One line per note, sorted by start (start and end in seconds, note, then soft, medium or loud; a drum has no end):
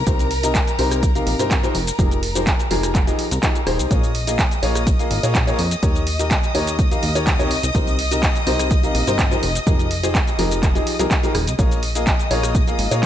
0.00 3.92 A#4 medium
0.00 3.92 A#5 medium
0.07 0.61 C2 loud
0.07 0.25 C3 medium
0.07 0.25 D#4 medium
0.07 0.25 G4 medium
0.07 0.25 A#4 medium
0.07 0.25 C5 medium
0.07 kick loud
0.07 closed hi-hat medium
0.07 shaker medium
0.19 closed hi-hat soft
0.19 shaker soft
0.31 open hi-hat loud
0.43 0.54 C3 medium
0.43 0.54 D#4 medium
0.43 0.54 G4 medium
0.43 0.54 A#4 medium
0.43 0.54 D#5 medium
0.43 closed hi-hat medium
0.43 shaker medium
0.55 kick loud
0.55 clap loud
0.55 closed hi-hat medium
0.55 shaker medium
0.67 closed hi-hat soft
0.67 shaker soft
0.79 1.21 C2 medium
0.79 0.97 C3 medium
0.79 0.97 D#4 medium
0.79 0.97 G4 medium
0.79 0.97 A#4 medium
0.79 0.97 C5 loud
0.79 open hi-hat loud
0.91 cross-stick medium
0.91 closed hi-hat medium
0.91 shaker medium
1.03 kick loud
1.03 closed hi-hat medium
1.03 shaker medium
1.15 1.33 C3 medium
1.15 1.33 D#4 medium
1.15 1.33 G4 medium
1.15 1.33 A#4 medium
1.15 1.33 F5 medium
1.15 closed hi-hat soft
1.15 shaker soft
1.27 1.35 A#1 loud
1.27 open hi-hat loud
1.39 1.69 G1 medium
1.39 1.50 C3 loud
1.39 1.50 D#4 medium
1.39 1.50 G4 medium
1.39 1.50 A#4 medium
1.39 1.50 C5 loud
1.39 closed hi-hat medium
1.39 shaker medium
1.51 kick loud
1.51 clap loud
1.51 closed hi-hat medium
1.51 shaker medium
1.63 1.73 F3 medium
1.63 1.73 D#4 medium
1.63 1.73 G4 medium
1.63 1.73 A#4 medium
1.63 1.73 C5 loud
1.63 closed hi-hat soft
1.63 shaker soft
1.75 1.91 F1 medium
1.75 open hi-hat loud
1.87 closed hi-hat medium
1.87 shaker medium
1.99 2.53 F1 loud
1.99 2.17 F3 medium
1.99 2.17 D#4 medium
1.99 2.17 G4 medium
1.99 2.17 G#4 medium
1.99 2.17 A#4 medium
1.99 kick loud
1.99 closed hi-hat medium
1.99 shaker medium
2.11 closed hi-hat soft
2.11 shaker soft
2.23 open hi-hat loud
2.35 2.46 F3 medium
2.35 2.46 D#4 medium
2.35 2.46 G4 medium
2.35 2.46 G#4 medium
2.35 2.46 C5 medium
2.35 closed hi-hat medium
2.35 shaker medium
2.47 kick loud
2.47 clap loud
2.47 closed hi-hat medium
2.47 shaker medium
2.59 closed hi-hat soft
2.59 shaker soft
2.71 3.13 F1 medium
2.71 2.89 F3 medium
2.71 2.89 D#4 medium
2.71 2.89 G4 medium
2.71 2.89 G#4 medium
2.71 2.89 A#4 loud
2.71 open hi-hat loud
2.83 cross-stick medium
2.83 closed hi-hat medium
2.83 shaker medium
2.95 kick loud
2.95 clap medium
2.95 closed hi-hat medium
2.95 shaker medium
3.07 3.25 F3 medium
3.07 3.25 D#4 medium
3.07 3.25 G4 medium
3.07 3.25 G#4 medium
3.07 3.25 D#5 medium
3.07 closed hi-hat soft
3.07 shaker soft
3.19 open hi-hat loud
3.31 3.39 C2 medium
3.31 closed hi-hat medium
3.31 shaker medium
3.43 3.55 F3 medium
3.43 3.55 D#4 medium
3.43 3.55 G4 medium
3.43 3.55 G#4 medium
3.43 3.55 D#5 medium
3.43 kick loud
3.43 clap loud
3.43 closed hi-hat medium
3.43 shaker medium
3.55 closed hi-hat soft
3.55 shaker soft
3.67 3.81 D#1 loud
3.67 3.88 D#4 medium
3.67 3.88 G4 medium
3.67 3.88 G#4 medium
3.67 3.88 C5 loud
3.67 cross-stick medium
3.67 open hi-hat loud
3.79 3.87 C2 loud
3.79 closed hi-hat medium
3.79 shaker medium
3.91 4.45 A#1 loud
3.91 4.09 A#3 medium
3.91 4.09 F4 medium
3.91 4.09 G#4 medium
3.91 4.09 A#4 medium
3.91 4.09 C#5 medium
3.91 11.58 D#5 medium
3.91 11.58 D#6 medium
3.91 kick loud
3.91 closed hi-hat medium
3.91 shaker medium
4.03 closed hi-hat soft
4.03 shaker soft
4.15 open hi-hat loud
4.27 4.38 A#3 medium
4.27 4.38 F4 medium
4.27 4.38 G#4 medium
4.27 4.38 A#4 medium
4.27 4.38 D#5 medium
4.27 closed hi-hat medium
4.27 shaker medium
4.39 kick loud
4.39 clap loud
4.39 closed hi-hat medium
4.39 shaker medium
4.51 closed hi-hat soft
4.51 shaker soft
4.63 5.05 A#1 medium
4.63 4.81 A#3 medium
4.63 4.81 F4 medium
4.63 4.81 G#4 medium
4.63 4.81 A#4 medium
4.63 4.81 C#5 loud
4.63 open hi-hat loud
4.75 cross-stick medium
4.75 closed hi-hat medium
4.75 shaker medium
4.87 kick loud
4.87 closed hi-hat medium
4.87 shaker medium
4.99 5.17 A#3 medium
4.99 5.17 F4 medium
4.99 5.17 G#4 medium
4.99 5.17 A#4 medium
4.99 5.17 F5 medium
4.99 closed hi-hat soft
4.99 shaker soft
5.11 5.19 G#1 loud
5.11 open hi-hat loud
5.23 5.53 A#2 medium
5.23 5.34 A#3 loud
5.23 5.34 F4 medium
5.23 5.34 G#4 medium
5.23 5.34 A#4 medium
5.23 5.34 C#5 loud
5.23 closed hi-hat medium
5.23 shaker medium
5.35 kick loud
5.35 clap loud
5.35 closed hi-hat medium
5.35 shaker medium
5.47 5.58 A#3 medium
5.47 5.58 F4 medium
5.47 5.58 G#4 medium
5.47 5.58 A#4 medium
5.47 5.58 C#5 loud
5.47 closed hi-hat soft
5.47 shaker soft
5.59 5.75 F2 loud
5.59 open hi-hat loud
5.71 closed hi-hat medium
5.71 shaker medium
5.83 6.37 D#2 loud
5.83 6.01 D#3 medium
5.83 6.01 D#4 medium
5.83 6.01 G4 medium
5.83 6.01 A#4 medium
5.83 6.01 C#5 medium
5.83 kick loud
5.83 closed hi-hat medium
5.83 shaker medium
5.95 closed hi-hat soft
5.95 shaker soft
6.07 open hi-hat loud
6.19 6.30 D#3 medium
6.19 6.30 D#4 medium
6.19 6.30 G4 medium
6.19 6.30 A#4 medium
6.19 6.30 D#5 medium
6.19 closed hi-hat medium
6.19 shaker medium
6.31 kick loud
6.31 clap loud
6.31 closed hi-hat medium
6.31 shaker medium
6.43 closed hi-hat soft
6.43 shaker soft
6.55 6.97 D#2 medium
6.55 6.73 D#3 medium
6.55 6.73 D#4 medium
6.55 6.73 G4 medium
6.55 6.73 A#4 medium
6.55 6.73 C#5 loud
6.55 open hi-hat loud
6.67 closed hi-hat medium
6.67 shaker medium
6.79 kick loud
6.79 closed hi-hat medium
6.79 shaker medium
6.91 7.09 D#3 medium
6.91 7.09 D#4 medium
6.91 7.09 G4 medium
6.91 7.09 A#4 medium
6.91 7.09 F5 medium
6.91 closed hi-hat soft
6.91 shaker soft
7.03 7.52 D#2 medium
7.03 open hi-hat loud
7.15 7.26 D#3 loud
7.15 7.26 D#4 medium
7.15 7.26 G4 medium
7.15 7.26 A#4 medium
7.15 7.26 C#5 loud
7.15 closed hi-hat medium
7.15 shaker medium
7.27 kick loud
7.27 clap loud
7.27 closed hi-hat medium
7.27 shaker medium
7.39 7.49 C3 medium
7.39 7.49 D#4 medium
7.39 7.49 G4 medium
7.39 7.49 A#4 medium
7.39 7.49 C#5 loud
7.39 closed hi-hat soft
7.39 shaker soft
7.51 7.59 C2 medium
7.51 open hi-hat loud
7.63 7.71 C2 medium
7.63 closed hi-hat medium
7.63 shaker medium
7.75 8.29 C2 loud
7.75 7.93 C3 medium
7.75 7.93 D#4 medium
7.75 7.93 G4 medium
7.75 7.93 A#4 medium
7.75 7.93 C5 medium
7.75 kick loud
7.75 closed hi-hat medium
7.75 shaker medium
7.87 closed hi-hat soft
7.87 shaker soft
7.99 open hi-hat loud
8.11 8.22 C3 medium
8.11 8.22 D#4 medium
8.11 8.22 G4 medium
8.11 8.22 A#4 medium
8.11 8.22 D#5 medium
8.11 closed hi-hat medium
8.11 shaker medium
8.23 kick loud
8.23 clap loud
8.23 closed hi-hat medium
8.23 shaker medium
8.35 closed hi-hat soft
8.35 shaker soft
8.47 8.89 C2 medium
8.47 8.65 C3 medium
8.47 8.65 D#4 medium
8.47 8.65 G4 medium
8.47 8.65 A#4 medium
8.47 8.65 C5 loud
8.47 open hi-hat loud
8.59 cross-stick medium
8.59 closed hi-hat medium
8.59 shaker medium
8.71 kick loud
8.71 closed hi-hat medium
8.71 shaker medium
8.83 9.01 C3 medium
8.83 9.01 D#4 medium
8.83 9.01 G4 medium
8.83 9.01 A#4 medium
8.83 9.01 F5 medium
8.83 closed hi-hat soft
8.83 shaker soft
8.95 9.03 A#1 loud
8.95 open hi-hat loud
9.07 9.37 G1 medium
9.07 9.18 C3 loud
9.07 9.18 D#4 medium
9.07 9.18 G4 medium
9.07 9.18 A#4 medium
9.07 9.18 C5 loud
9.07 closed hi-hat medium
9.07 shaker medium
9.19 kick loud
9.19 clap loud
9.19 closed hi-hat medium
9.19 shaker medium
9.31 9.41 F3 medium
9.31 9.41 D#4 medium
9.31 9.41 G4 medium
9.31 9.41 A#4 medium
9.31 9.41 C5 loud
9.31 closed hi-hat soft
9.31 shaker soft
9.43 9.59 F1 loud
9.43 open hi-hat loud
9.55 closed hi-hat medium
9.55 shaker medium
9.67 10.21 F1 loud
9.67 9.85 F3 medium
9.67 9.85 D#4 medium
9.67 9.85 G4 medium
9.67 9.85 G#4 medium
9.67 9.85 A#4 medium
9.67 kick loud
9.67 closed hi-hat medium
9.67 shaker medium
9.79 closed hi-hat soft
9.79 shaker soft
9.91 open hi-hat loud
10.03 10.14 F3 medium
10.03 10.14 D#4 medium
10.03 10.14 G4 medium
10.03 10.14 G#4 medium
10.03 10.14 C5 medium
10.03 closed hi-hat soft
10.03 shaker medium
10.15 kick loud
10.15 clap loud
10.15 closed hi-hat medium
10.15 shaker medium
10.27 closed hi-hat soft
10.27 shaker soft
10.39 10.81 F1 medium
10.39 10.57 F3 medium
10.39 10.57 D#4 medium
10.39 10.57 G4 medium
10.39 10.57 G#4 medium
10.39 10.57 A#4 loud
10.39 open hi-hat loud
10.51 closed hi-hat soft
10.51 shaker medium
10.63 kick loud
10.63 clap medium
10.63 closed hi-hat medium
10.63 shaker medium
10.75 10.93 F3 medium
10.75 10.93 D#4 medium
10.75 10.93 G4 medium
10.75 10.93 G#4 medium
10.75 10.93 D#5 medium
10.75 closed hi-hat soft
10.75 shaker soft
10.87 open hi-hat loud
10.99 11.07 C2 medium
10.99 11.10 F3 loud
10.99 11.10 D#4 medium
10.99 11.10 G4 medium
10.99 11.10 G#4 medium
10.99 11.10 A#4 loud
10.99 closed hi-hat medium
10.99 shaker medium
11.11 kick loud
11.11 clap loud
11.11 closed hi-hat medium
11.11 shaker medium
11.23 11.34 F3 medium
11.23 11.34 D#4 medium
11.23 11.34 G4 medium
11.23 11.34 G#4 medium
11.23 11.34 A#4 loud
11.23 closed hi-hat soft
11.23 shaker soft
11.35 11.49 D#1 loud
11.35 cross-stick medium
11.35 open hi-hat loud
11.47 11.55 C2 loud
11.47 closed hi-hat medium
11.47 shaker medium
11.59 12.13 A#1 loud
11.59 11.77 A#3 medium
11.59 11.77 F4 medium
11.59 11.77 G#4 medium
11.59 11.77 A#4 medium
11.59 11.77 C#5 medium
11.59 13.06 D#5 medium
11.59 13.06 D#6 medium
11.59 kick loud
11.59 closed hi-hat medium
11.59 shaker medium
11.71 closed hi-hat soft
11.71 shaker soft
11.83 open hi-hat loud
11.95 12.06 A#3 medium
11.95 12.06 F4 medium
11.95 12.06 G#4 medium
11.95 12.06 A#4 medium
11.95 12.06 D#5 medium
11.95 closed hi-hat medium
11.95 shaker medium
12.07 kick loud
12.07 clap loud
12.07 closed hi-hat medium
12.07 shaker medium
12.19 closed hi-hat soft
12.19 shaker soft
12.31 12.73 A#1 medium
12.31 12.49 A#3 medium
12.31 12.49 F4 medium
12.31 12.49 G#4 medium
12.31 12.49 A#4 medium
12.31 12.49 C#5 loud
12.31 open hi-hat loud
12.43 cross-stick medium
12.43 closed hi-hat medium
12.43 shaker medium
12.55 kick loud
12.55 closed hi-hat medium
12.55 shaker medium
12.67 12.85 A#3 medium
12.67 12.85 F4 medium
12.67 12.85 G#4 medium
12.67 12.85 A#4 medium
12.67 12.85 F5 medium
12.67 closed hi-hat soft
12.67 shaker soft
12.79 12.87 G#1 loud
12.79 open hi-hat loud
12.91 13.06 A#2 medium
12.91 13.02 A#3 loud
12.91 13.02 F4 medium
12.91 13.02 G#4 medium
12.91 13.02 A#4 medium
12.91 13.02 C#5 loud
12.91 closed hi-hat medium
12.91 shaker medium